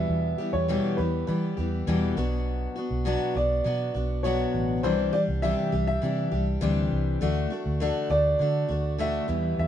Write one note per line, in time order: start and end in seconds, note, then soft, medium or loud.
0.00 0.40 E2 medium
0.00 0.39 B2 medium
0.00 0.39 E3 medium
0.00 0.39 G3 medium
0.00 0.39 B3 medium
0.00 0.37 G4 medium
0.00 0.56 E5 loud
0.09 0.34 E2 loud
0.38 0.68 E3 soft
0.38 0.68 G3 medium
0.38 0.69 B3 medium
0.38 0.68 G4 medium
0.53 0.78 E2 loud
0.53 0.99 C#5 medium
0.68 0.98 E2 medium
0.68 0.98 B2 medium
0.68 0.99 E3 medium
0.68 0.99 G3 medium
0.68 0.98 B3 medium
0.68 0.97 G4 medium
0.97 1.23 E2 loud
0.97 1.26 E3 soft
0.97 1.27 G3 soft
0.97 1.28 B3 medium
0.97 1.28 G4 medium
0.97 1.26 B4 medium
1.27 1.57 E3 medium
1.27 1.52 E3 loud
1.27 1.58 G3 medium
1.27 1.57 B3 medium
1.27 1.56 G4 medium
1.27 2.13 B4 medium
1.57 1.82 E2 loud
1.57 1.87 E3 soft
1.57 1.87 G3 soft
1.57 1.87 B3 medium
1.57 1.87 G4 medium
1.87 2.17 E2 medium
1.87 2.12 E2 loud
1.87 2.17 B2 medium
1.87 2.17 E3 loud
1.87 2.17 G3 medium
1.87 2.17 B3 medium
1.87 2.16 G4 medium
2.17 2.66 B1 medium
2.17 2.77 B2 medium
2.17 2.77 F#3 medium
2.17 2.77 B3 medium
2.17 2.77 D4 medium
2.17 2.74 F#4 medium
2.76 3.05 B3 medium
2.76 3.05 D4 medium
2.76 3.06 F#4 medium
2.91 3.15 B1 medium
3.05 3.35 B2 medium
3.05 3.35 F#3 medium
3.05 3.36 B3 medium
3.05 3.35 D4 loud
3.05 3.34 F#4 loud
3.35 3.60 B1 loud
3.35 3.64 B3 soft
3.35 3.65 D4 soft
3.35 3.65 F#4 medium
3.35 4.21 D5 medium
3.64 3.90 B2 loud
3.64 3.94 F#3 medium
3.64 3.95 B3 medium
3.64 3.95 D4 medium
3.64 3.93 F#4 medium
3.94 4.44 B1 medium
3.94 4.24 B3 soft
3.94 4.25 D4 medium
3.94 4.24 F#4 medium
4.23 4.83 B2 medium
4.23 4.84 F#3 medium
4.23 4.84 B3 loud
4.23 4.85 D4 medium
4.23 4.85 F#4 medium
4.23 4.85 C#5 medium
4.54 4.84 A1 medium
4.83 5.08 C2 loud
4.83 5.13 C3 medium
4.83 5.14 E3 medium
4.83 5.14 G3 medium
4.83 5.13 D4 medium
4.83 5.11 G4 medium
4.83 5.14 C5 medium
5.13 5.43 G3 soft
5.13 5.43 D4 medium
5.13 5.43 G4 medium
5.13 5.20 D5 medium
5.28 5.53 C2 loud
5.42 5.73 C3 medium
5.42 5.73 E3 medium
5.42 5.73 G3 medium
5.42 5.73 D4 medium
5.42 5.71 G4 medium
5.42 5.86 E5 loud
5.72 5.97 C2 loud
5.72 6.02 G3 soft
5.72 6.03 D4 soft
5.72 6.02 G4 medium
5.87 6.43 E5 loud
6.02 6.27 C3 loud
6.02 6.32 E3 medium
6.02 6.32 G3 medium
6.02 6.32 D4 medium
6.02 6.30 G4 medium
6.32 6.57 C2 loud
6.32 6.61 G3 soft
6.32 6.61 D4 medium
6.32 6.62 G4 medium
6.61 6.86 D2 loud
6.61 7.21 C3 loud
6.61 7.20 E3 loud
6.61 7.21 G3 medium
6.61 7.22 D4 loud
6.61 7.22 G4 loud
6.92 7.16 C2 medium
7.21 7.46 D2 loud
7.21 7.51 D3 medium
7.21 7.51 A3 medium
7.21 7.50 D4 medium
7.21 7.49 F#4 medium
7.50 7.80 A3 medium
7.50 7.81 D4 medium
7.50 7.80 F#4 medium
7.66 7.90 D2 medium
7.80 8.10 D3 medium
7.80 8.11 A3 medium
7.80 8.10 D4 loud
7.80 8.08 F#4 loud
8.09 8.34 D2 loud
8.09 8.39 A3 soft
8.09 8.40 D4 soft
8.09 8.40 F#4 medium
8.09 9.02 D5 loud
8.39 8.69 D3 medium
8.39 8.64 D3 loud
8.39 8.70 A3 medium
8.39 8.69 D4 medium
8.39 8.67 F#4 medium
8.69 9.18 D2 medium
8.69 8.98 A3 soft
8.69 8.99 D4 soft
8.69 8.99 F#4 medium
8.98 9.28 D3 medium
8.98 9.28 A3 medium
8.98 9.28 D4 medium
8.98 9.27 F#4 loud
8.98 9.55 E5 loud
9.28 9.53 E2 loud
9.28 9.67 E2 medium
9.28 9.67 B2 medium
9.28 9.67 E3 medium
9.28 9.67 G3 medium
9.28 9.67 B3 medium
9.28 9.67 G4 medium
9.58 9.67 E2 loud
9.58 9.67 E5 loud